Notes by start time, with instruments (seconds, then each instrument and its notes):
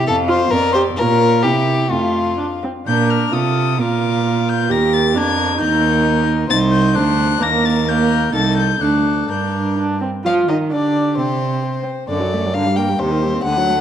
0.07 cello F2, violin A4 F5
0.28 viola F4, violin C5
0.51 cello F2, violin A#4 D5
0.73 viola G4, violin C5
0.96 cello A#2, viola F4, violin A#4 C#5
1.43 cello C3, viola E4, violin G4 E5
1.90 cello F2, viola A3, violin F4 F5
2.37 viola D4
2.63 viola C4
2.86 cello A#2, viola D4, violin A#4 G6
3.10 violin F6
3.32 cello C3, viola F4, violin A4 D#6
3.78 cello A#2, viola F4, violin A#4 D6
4.49 violin G6
4.70 cello D#2, viola G4, violin A#4 A#6
4.93 violin A6
5.14 cello F2, viola D4, violin A#4 G#6
5.58 cello D#2, viola D#4, violin A#4 G6
6.49 cello C2, viola D#4, violin C5 A6
6.72 violin G6
6.95 cello D2, viola D4, violin C5 F#6
7.41 cello D#2, viola A#3, violin A#4 A#6
7.65 violin A6
7.86 viola A#3, violin A#4 G6
8.33 cello C2, viola D#4, violin A4 A6
8.57 violin G6
8.81 cello D2, viola D4, violin A4 F#6
9.28 cello G2, viola D4, violin A#4 G6
9.77 viola D4
10.01 viola C4
10.24 cello F3, viola F4, violin F5
10.48 cello D#3, viola D#4, violin D#5
10.72 cello D3, viola D4, violin G4 D5
11.17 cello C3, viola C4, violin C5
11.63 violin C5
12.09 cello F#2, viola D3, violin A4 D5
12.20 viola F#3
12.33 viola A3
12.45 viola F#3
12.54 cello G2, viola D3, violin A#4 F5
12.66 viola G3
12.76 viola A#3, violin G5
12.88 viola G3
12.99 cello D#2, viola C3, violin G4 C5
13.11 viola D#3
13.22 viola G3
13.34 viola C4
13.43 cello D2, viola D3, violin A4 F#5
13.57 viola F#3
13.68 viola A3